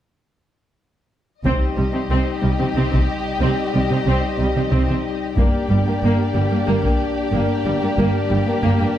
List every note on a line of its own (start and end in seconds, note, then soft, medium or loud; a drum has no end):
1.44 1.51 C2 soft
1.44 1.51 C3 soft
1.44 5.34 G3 soft
1.44 1.60 C4 soft
1.44 5.34 D#4 soft
1.44 5.35 G4 soft
1.44 5.34 D#5 soft
1.44 taiko soft
1.77 1.84 C2 soft
1.77 1.84 C3 soft
1.77 1.84 G3 soft
1.93 2.00 C3 soft
1.93 2.00 C4 soft
2.10 2.17 C2 soft
2.10 2.17 C3 soft
2.10 2.26 C4 soft
2.42 2.50 C2 soft
2.42 2.49 C3 soft
2.42 2.49 G3 soft
2.59 2.66 C3 soft
2.59 2.66 C4 soft
2.76 2.82 C2 soft
2.76 2.83 C3 soft
2.76 2.90 C4 soft
2.91 3.00 C3 soft
2.91 2.98 C4 soft
2.91 taiko soft
3.41 3.48 C2 soft
3.41 3.48 C3 soft
3.41 3.57 C4 soft
3.74 3.81 C2 soft
3.74 3.81 C3 soft
3.74 3.80 G3 soft
3.90 3.97 C3 soft
3.90 3.98 C4 soft
4.06 4.13 C2 soft
4.06 4.13 C3 medium
4.06 4.23 C4 soft
4.38 4.46 C2 soft
4.38 4.45 C3 soft
4.38 4.48 G3 soft
4.55 4.62 C3 soft
4.55 4.63 C4 soft
4.71 4.79 C2 soft
4.71 4.78 C3 medium
4.71 4.86 C4 soft
4.87 4.94 C3 soft
4.87 4.94 C4 soft
5.36 5.45 G1 soft
5.36 5.43 G2 soft
5.36 5.53 A#3 soft
5.36 8.98 A#3 soft
5.36 8.98 D4 soft
5.36 8.98 G4 soft
5.36 8.98 D5 soft
5.36 taiko soft
5.69 5.77 G1 soft
5.69 5.76 G2 soft
5.69 5.76 G3 soft
5.85 5.92 G2 soft
5.85 5.93 A#3 soft
6.02 6.09 G1 medium
6.02 6.08 G2 medium
6.02 6.18 A#3 medium
6.34 6.42 G1 soft
6.34 6.41 G2 soft
6.34 6.41 G3 soft
6.50 6.57 G2 soft
6.50 6.56 A#3 soft
6.66 6.74 G1 medium
6.66 6.73 G2 medium
6.66 6.82 A#3 soft
6.83 6.89 G2 soft
6.83 6.90 A#3 soft
6.83 taiko soft
7.32 7.40 G1 medium
7.32 7.38 G2 medium
7.32 7.48 A#3 soft
7.65 7.72 G1 soft
7.65 7.71 G2 soft
7.65 7.71 G3 soft
7.81 7.87 G2 soft
7.81 7.88 A#3 soft
7.98 8.04 G1 medium
7.98 8.04 G2 medium
7.98 8.13 A#3 medium
8.29 8.37 G1 soft
8.29 8.36 G2 soft
8.29 8.37 G3 soft
8.46 8.53 G2 soft
8.46 8.53 A#3 soft
8.62 8.69 G1 medium
8.62 8.69 G2 medium
8.62 8.77 A#3 medium
8.79 8.86 G2 soft
8.79 8.85 A#3 soft